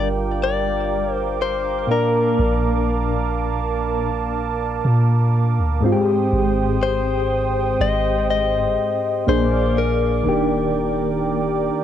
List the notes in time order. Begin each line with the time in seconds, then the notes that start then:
Already playing: G1 G3 D4 F4 A#4 F5 G5 D6
0.43 D5
1.14 C5
1.42 C5
1.87 A#2 A#3 D4 A5
1.92 A#4
2.39 A#1
4.85 A#2
5.59 D2
5.81 G#2 G#3 C4 C5 G5 D#6
5.86 F4
5.92 G4
6.32 G#1
6.83 C5
7.80 G#1 D#5
8.30 D#5
8.54 G1
9.26 A#1 A#2 A#3 D4 G#4 C5 D5 F5 D6
9.78 A#4
10.23 D#1 D#3 A#3 D4 A#4 G5
10.29 G4